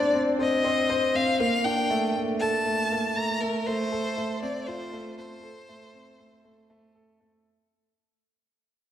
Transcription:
0.00 0.14 C4 medium
0.00 0.13 D4 medium
0.00 0.14 D5 loud
0.14 0.37 C4 medium
0.39 0.63 C4 medium
0.39 1.17 D#5 loud
0.64 0.88 C4 loud
0.90 1.14 C5 loud
1.15 1.29 C4 medium
1.15 1.40 F5 loud
1.40 1.64 A#3 loud
1.40 1.66 F5 loud
1.65 1.79 D4 medium
1.65 2.15 G5 loud
1.90 2.14 A3 medium
2.16 2.40 A3 medium
2.40 2.55 A4 medium
2.40 3.18 A5 loud
2.66 2.90 A3 medium
2.92 3.16 A#3 medium
3.16 3.41 A3 medium
3.16 3.42 A#5 loud
3.41 3.66 A3 medium
3.41 3.68 A#4 loud
3.67 3.91 A3 loud
3.67 4.42 C5 loud
3.92 4.16 A4 medium
4.17 4.32 A3 medium
4.43 4.66 C4 loud
4.43 4.68 D5 loud
4.67 4.82 F4 medium
4.67 5.17 C5 loud
4.93 5.17 A3 loud
5.18 5.42 A3 medium
5.18 6.90 C5 loud
5.43 5.58 A4 medium
5.69 5.93 A3 medium
5.94 6.18 C4 medium
6.19 6.43 A3 medium
6.44 6.68 A3 medium
6.70 6.94 A3 loud
6.95 7.19 A4 loud
7.20 7.34 A3 medium

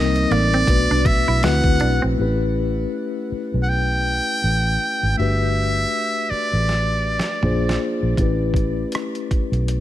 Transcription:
0.00 0.26 C2 medium
0.00 0.68 G3 medium
0.00 0.68 A#3 medium
0.00 0.68 C4 medium
0.00 0.68 D#4 medium
0.00 0.69 A#4 medium
0.00 0.33 D#5 medium
0.16 closed hi-hat medium
0.31 0.63 A1 medium
0.31 0.49 A#3 medium
0.31 1.07 D5 loud
0.31 closed hi-hat medium
0.54 0.66 C4 medium
0.54 closed hi-hat soft
0.67 0.87 B1 loud
0.67 1.41 A3 medium
0.67 1.43 B3 medium
0.67 1.43 D4 soft
0.67 1.43 F#4 medium
0.67 1.44 B4 medium
0.67 kick medium
0.67 closed hi-hat medium
0.90 1.06 C2 medium
0.90 1.03 D4 medium
1.05 1.25 B1 medium
1.05 1.45 E5 loud
1.05 muted clean electric guitar stroke soft
1.05 kick loud
1.05 closed hi-hat medium
1.28 1.41 B1 medium
1.28 1.40 E4 medium
1.43 1.63 D2 medium
1.43 2.16 A3 medium
1.43 2.17 C4 medium
1.43 2.18 E4 medium
1.43 2.18 F#4 medium
1.43 2.19 B4 medium
1.43 2.03 F#5 medium
1.43 muted clean electric guitar stroke soft
1.43 snare loud
1.43 closed hi-hat medium
1.64 1.78 D2 medium
1.64 kick medium
1.80 2.00 B1 medium
1.80 1.98 D4 medium
1.80 closed hi-hat medium
2.02 2.17 A#1 medium
2.02 2.15 C4 medium
2.17 2.84 A1 medium
2.17 5.13 A3 medium
2.17 2.25 C4 soft
2.17 5.14 E4 medium
2.17 5.15 G4 medium
2.21 5.17 C#4 medium
2.21 5.16 B4 medium
3.32 muted fingered electric bass stroke soft
3.54 4.19 B1 medium
3.63 3.70 F#5 medium
3.69 5.17 G5 medium
4.44 4.76 A1 medium
5.03 5.16 G#1 medium
5.17 5.84 G1 medium
5.17 7.38 A3 medium
5.17 7.39 D4 soft
5.17 7.39 F#4 soft
5.17 7.40 G4 soft
5.17 6.31 E5 medium
5.21 7.40 B4 medium
6.30 7.80 D5 medium
6.30 muted fingered electric bass stroke soft
6.53 7.18 A1 medium
6.69 snare soft
7.19 snare medium
7.43 7.76 A#1 medium
7.43 8.18 A#3 medium
7.43 8.18 D4 medium
7.43 8.18 F4 medium
7.43 8.19 G#4 medium
7.43 8.19 C5 medium
7.43 mid tom medium
7.69 snare medium
8.02 8.16 A#1 medium
8.16 8.83 A1 medium
8.16 9.80 A3 medium
8.16 9.80 C#4 medium
8.16 9.80 E4 medium
8.16 9.80 G4 medium
8.16 kick medium
8.16 closed hi-hat medium
8.21 9.80 B4 medium
8.54 kick medium
8.54 closed hi-hat medium
8.92 cross-stick medium
8.92 closed hi-hat medium
9.15 closed hi-hat soft
9.31 muted fingered electric bass stroke soft
9.31 kick medium
9.31 closed hi-hat soft
9.52 9.80 B1 medium
9.52 closed hi-hat soft
9.68 closed hi-hat medium

